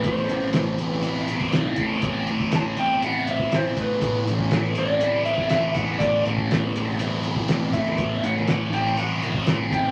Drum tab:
HH |x-x-x-x-x-x-x-x-|x-x-x-x-x-x-x-x-|x-x-x-x-x-x-x-x-|x-x-x-x-x-x-x-x-|
SD |----o-------o---|----o-------o---|----o-------o---|----o-------o--o|
BD |o----------o--o-|o--o-------o--o-|o--o-------o--o-|o--o-------o--o-|

HH |x-x-x-x-x-x-x-x-|
SD |---oo-----o-o---|
BD |o----------o--o-|